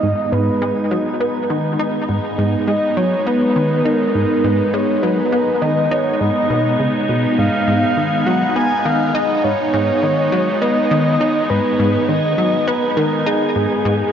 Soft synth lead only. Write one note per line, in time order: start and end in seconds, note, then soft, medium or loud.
0.00 0.34 D#5 loud
0.32 0.91 B4 medium
2.67 2.98 D#5 loud
2.97 3.28 C#5 loud
3.26 3.87 B4 loud
3.85 4.45 A#4 loud
4.44 4.75 B4 medium
4.73 5.04 C#5 medium
5.03 5.63 B4 loud
5.62 5.93 D#5 loud
5.91 6.20 C#5 medium
6.21 7.05 D#5 medium
7.38 8.28 F5 loud
8.26 8.55 F#5 loud
8.56 8.87 G#5 loud
8.85 9.16 F5 loud
9.15 9.45 D#5 loud
9.44 10.61 C#5 loud
10.61 11.51 D#5 loud
11.50 12.10 B4 loud
12.09 12.69 D#5 loud
12.68 12.98 B4 medium
12.97 13.28 A#4 medium
13.26 14.12 G#4 medium